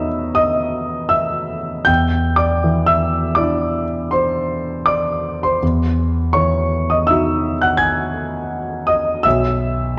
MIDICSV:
0, 0, Header, 1, 2, 480
1, 0, Start_track
1, 0, Key_signature, 4, "major"
1, 0, Tempo, 750000
1, 1206, Time_signature, 5, 2, 24, 8
1, 3124, Tempo, 736196
1, 4564, Tempo, 720288
1, 6496, End_track
2, 0, Start_track
2, 0, Title_t, "Grand piano"
2, 0, Program_c, 0, 0
2, 0, Control_c, 0, 64, 127
2, 0, Note_on_c, 0, 40, 48
2, 0, Note_on_c, 0, 52, 31
2, 0, Note_on_c, 0, 59, 31
2, 0, Note_on_c, 0, 63, 35
2, 0, Note_on_c, 0, 71, 50
2, 0, Note_on_c, 0, 73, 48
2, 0, Note_on_c, 0, 75, 56
2, 0, Note_on_c, 0, 76, 52
2, 0, Note_on_c, 0, 83, 74
2, 0, Note_on_c, 0, 85, 63
2, 0, Note_on_c, 0, 87, 67
2, 0, Note_on_c, 0, 88, 66
2, 212, Note_off_c, 0, 76, 0
2, 224, Note_off_c, 0, 87, 0
2, 224, Note_on_c, 0, 87, 66
2, 228, Note_off_c, 0, 75, 0
2, 228, Note_on_c, 0, 75, 56
2, 235, Note_off_c, 0, 88, 0
2, 685, Note_off_c, 0, 75, 0
2, 698, Note_on_c, 0, 88, 70
2, 703, Note_on_c, 0, 76, 47
2, 709, Note_off_c, 0, 87, 0
2, 1172, Note_off_c, 0, 76, 0
2, 1177, Note_off_c, 0, 59, 0
2, 1179, Note_off_c, 0, 63, 0
2, 1182, Note_on_c, 0, 91, 78
2, 1183, Note_off_c, 0, 40, 0
2, 1192, Note_on_c, 0, 79, 58
2, 1195, Note_off_c, 0, 88, 0
2, 1197, Note_on_c, 0, 40, 42
2, 1217, Control_c, 0, 64, 0
2, 1218, Note_off_c, 0, 52, 0
2, 1220, Note_off_c, 0, 73, 0
2, 1220, Note_off_c, 0, 85, 0
2, 1223, Note_off_c, 0, 71, 0
2, 1223, Note_off_c, 0, 83, 0
2, 1316, Control_c, 0, 64, 127
2, 1497, Note_off_c, 0, 79, 0
2, 1511, Note_on_c, 0, 86, 58
2, 1516, Note_off_c, 0, 91, 0
2, 1518, Note_on_c, 0, 74, 47
2, 1688, Note_on_c, 0, 52, 32
2, 1821, Note_off_c, 0, 74, 0
2, 1833, Note_on_c, 0, 88, 70
2, 1840, Note_on_c, 0, 76, 50
2, 1841, Note_off_c, 0, 86, 0
2, 2142, Note_off_c, 0, 76, 0
2, 2144, Note_on_c, 0, 86, 59
2, 2153, Note_on_c, 0, 74, 52
2, 2159, Note_on_c, 0, 62, 30
2, 2159, Note_on_c, 0, 64, 34
2, 2161, Note_off_c, 0, 88, 0
2, 2456, Note_off_c, 0, 52, 0
2, 2616, Note_off_c, 0, 74, 0
2, 2630, Note_on_c, 0, 84, 59
2, 2637, Note_off_c, 0, 86, 0
2, 2641, Note_on_c, 0, 72, 48
2, 3096, Note_off_c, 0, 72, 0
2, 3109, Note_on_c, 0, 86, 62
2, 3116, Note_off_c, 0, 84, 0
2, 3116, Note_on_c, 0, 74, 45
2, 3454, Note_off_c, 0, 74, 0
2, 3476, Note_off_c, 0, 86, 0
2, 3484, Note_on_c, 0, 84, 58
2, 3490, Note_on_c, 0, 72, 42
2, 3574, Note_off_c, 0, 64, 0
2, 3575, Note_off_c, 0, 40, 0
2, 3575, Note_off_c, 0, 62, 0
2, 3600, Note_off_c, 0, 72, 0
2, 3605, Note_off_c, 0, 84, 0
2, 3610, Note_on_c, 0, 40, 41
2, 3615, Control_c, 0, 64, 0
2, 3727, Control_c, 0, 64, 127
2, 4069, Note_on_c, 0, 85, 71
2, 4075, Note_on_c, 0, 73, 45
2, 4081, Note_on_c, 0, 52, 29
2, 4416, Note_off_c, 0, 73, 0
2, 4437, Note_on_c, 0, 87, 51
2, 4439, Note_off_c, 0, 85, 0
2, 4446, Note_on_c, 0, 75, 40
2, 4548, Note_on_c, 0, 88, 65
2, 4557, Note_on_c, 0, 76, 45
2, 4558, Note_off_c, 0, 75, 0
2, 4562, Note_off_c, 0, 87, 0
2, 4563, Note_on_c, 0, 63, 30
2, 4567, Note_on_c, 0, 66, 36
2, 4851, Note_off_c, 0, 52, 0
2, 4894, Note_off_c, 0, 76, 0
2, 4913, Note_on_c, 0, 90, 62
2, 4915, Note_off_c, 0, 88, 0
2, 4920, Note_on_c, 0, 78, 51
2, 5019, Note_on_c, 0, 92, 77
2, 5025, Note_on_c, 0, 80, 51
2, 5031, Note_off_c, 0, 78, 0
2, 5036, Note_off_c, 0, 90, 0
2, 5725, Note_off_c, 0, 80, 0
2, 5748, Note_on_c, 0, 87, 60
2, 5749, Note_off_c, 0, 92, 0
2, 5755, Note_on_c, 0, 75, 50
2, 5974, Note_off_c, 0, 63, 0
2, 5976, Note_off_c, 0, 66, 0
2, 5978, Note_off_c, 0, 40, 0
2, 5983, Note_off_c, 0, 75, 0
2, 5990, Note_on_c, 0, 88, 77
2, 5997, Note_off_c, 0, 87, 0
2, 6000, Note_on_c, 0, 76, 57
2, 6009, Note_on_c, 0, 35, 45
2, 6014, Control_c, 0, 64, 0
2, 6113, Control_c, 0, 64, 127
2, 6458, Note_off_c, 0, 76, 0
2, 6480, Note_off_c, 0, 88, 0
2, 6496, Note_off_c, 0, 35, 0
2, 6496, End_track
0, 0, End_of_file